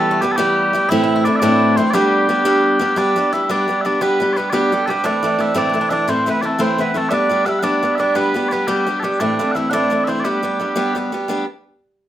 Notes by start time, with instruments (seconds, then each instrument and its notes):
Already playing: steel-string acoustic guitar E3 G3 B3 G4, bagpipes A4
0.11 bouzouki A3
0.21 steel-string acoustic guitar E3 G3 B3 G4, bouzouki G3, bagpipes G4
0.32 bagpipes A4
0.36 steel-string acoustic guitar E3 G3 B3 G4, bouzouki G3, bagpipes G4
0.73 steel-string acoustic guitar E3 G3 B3 G4
0.89 steel-string acoustic guitar A2 E3 A3 C4 E4, bouzouki E4, bagpipes E5
1.04 bouzouki E4
1.16 bouzouki E4
1.24 steel-string acoustic guitar E3 A3 C4 E4, bouzouki D4, bagpipes D5
1.36 bagpipes D5 E5
1.42 steel-string acoustic guitar A2 E3 A3 C4 E4, bouzouki D4
1.77 steel-string acoustic guitar E3 A3 C4 E4, bouzouki C4, bagpipes C5
1.91 steel-string acoustic guitar G3 B3 D4, bouzouki G3, bagpipes G4 D5
1.95 steel-string acoustic guitar G4
2.29 steel-string acoustic guitar G3 B3 D4 G4
2.45 steel-string acoustic guitar G3 B3 D4 G4
2.79 steel-string acoustic guitar G3 B3 D4 G4
2.96 steel-string acoustic guitar G3 B3 D4 G4, bouzouki D4, bagpipes D5
3.16 steel-string acoustic guitar G3 B3 D4 G4
3.33 steel-string acoustic guitar G3 B3 D4 G4, bouzouki E4, bagpipes E5
3.49 steel-string acoustic guitar G3 B3 D4 G4, bouzouki D4, bagpipes D5
3.68 steel-string acoustic guitar G3 B3 D4 G4
3.81 steel-string acoustic guitar G3, bagpipes E5
3.85 steel-string acoustic guitar B3 D4 G4, bouzouki D4, bagpipes D5
4.01 steel-string acoustic guitar G3 B3 D4 G4, bouzouki B3, bagpipes B4
4.20 steel-string acoustic guitar G3 B3 D4 G4
4.33 bouzouki B3, bagpipes B4 D5
4.37 steel-string acoustic guitar G3 B3 D4 G4
4.50 steel-string acoustic guitar G3 B3 D4 G4, bouzouki G3, bagpipes G4 D5
4.72 steel-string acoustic guitar G3 B3 D4 G4, bouzouki A3
4.86 bouzouki G3, steel-string acoustic guitar G3 B3, bagpipes G4 A4
4.90 steel-string acoustic guitar D4 G4
5.04 steel-string acoustic guitar A2 E3 A3 C4 E4, bouzouki D4, bagpipes D5
5.23 steel-string acoustic guitar E3 A3 C4 E4
5.39 steel-string acoustic guitar E3 A3 C4 E4, bagpipes E5
5.54 steel-string acoustic guitar A2 E3 A3 C4 E4, bouzouki D4, bagpipes D5
5.69 steel-string acoustic guitar E3, bouzouki D4
5.74 steel-string acoustic guitar A3 C4 E4
5.81 bouzouki D4
5.89 steel-string acoustic guitar E3 A3 C4 E4, bouzouki D4, bagpipes D5 E5
6.08 steel-string acoustic guitar A2 E3 A3 C4 E4, bouzouki C4, bagpipes C5
6.26 steel-string acoustic guitar E3 A3 C4 E4, bouzouki B3, bagpipes B4
6.42 steel-string acoustic guitar E3 A3 C4 E4, bouzouki A3, bagpipes D5
6.46 bagpipes A4
6.58 steel-string acoustic guitar A2 E3 A3 C4 E4, bouzouki C4, bagpipes C5
6.78 steel-string acoustic guitar E3 A3 C4 E4, bouzouki B3, bagpipes B4
6.94 steel-string acoustic guitar E3 A3 C4 E4, bouzouki A3, bagpipes A4
7.09 steel-string acoustic guitar G3 B3 D4 G4, bouzouki D4, bagpipes E5
7.13 bagpipes D5
7.29 steel-string acoustic guitar G3 B3 D4 G4
7.46 steel-string acoustic guitar G3 B3 D4 G4, bouzouki E4, bagpipes E5 F#5
7.59 steel-string acoustic guitar G3, bagpipes F#5
7.63 steel-string acoustic guitar B3 D4 G4, bouzouki D4, bagpipes D5
7.83 steel-string acoustic guitar G3 B3 D4 G4
7.95 steel-string acoustic guitar G3 B3, bagpipes E5
7.99 steel-string acoustic guitar D4 G4, bouzouki D4, bagpipes D5
8.15 steel-string acoustic guitar G3 B3 D4 G4, bouzouki B3, bagpipes B4
8.34 steel-string acoustic guitar G3 B3 D4 G4
8.49 steel-string acoustic guitar G3 B3 D4, bouzouki B3, bagpipes B4 D5
8.53 steel-string acoustic guitar G4
8.67 steel-string acoustic guitar G3 B3 D4 G4, bouzouki G3, bagpipes G4
8.86 steel-string acoustic guitar G3 B3 D4 G4
9.00 steel-string acoustic guitar G3 B3, bagpipes G4 A4
9.04 bouzouki G3, steel-string acoustic guitar D4 G4
9.20 steel-string acoustic guitar A2 E3 A3 C4 E4, bouzouki D4, bagpipes D5
9.39 steel-string acoustic guitar E3 A3 C4 E4
9.51 steel-string acoustic guitar E3, bagpipes F#5
9.55 steel-string acoustic guitar A3 C4 E4, bouzouki E4, bagpipes E5
9.70 steel-string acoustic guitar A2 E3 A3 C4, bouzouki D4, bagpipes D5 F#5
9.74 steel-string acoustic guitar E4
9.90 steel-string acoustic guitar E3 A3 C4 E4
10.04 steel-string acoustic guitar E3, bouzouki C4, bagpipes E5
10.08 steel-string acoustic guitar A3 C4 E4, bagpipes C5
10.20 bagpipes D5
10.24 bouzouki G3, steel-string acoustic guitar G3 B3 D4 G4, bagpipes G4
10.43 steel-string acoustic guitar G3 B3 D4 G4
10.60 steel-string acoustic guitar G3 B3 D4 G4
10.76 steel-string acoustic guitar G3 B3 D4 G4
10.95 steel-string acoustic guitar G3 B3 D4 G4
11.12 steel-string acoustic guitar G3 B3 D4 G4
11.28 steel-string acoustic guitar G3 B3 D4 G4